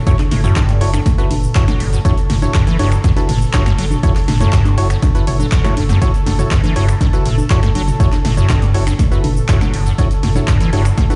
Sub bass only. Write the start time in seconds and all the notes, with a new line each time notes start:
0.31 F#1
0.81 F#1
1.31 F#1
1.80 F#1
2.30 F#1
2.79 F#1
3.29 F#1
3.78 F#1
4.28 F#1
4.78 F#1
5.27 F#1
5.77 F#1
6.26 F#1
6.76 F#1
7.26 F#1
7.75 F#1
8.25 F#1
8.74 F#1
9.24 F#1
9.74 F#1
10.23 F#1
10.73 F#1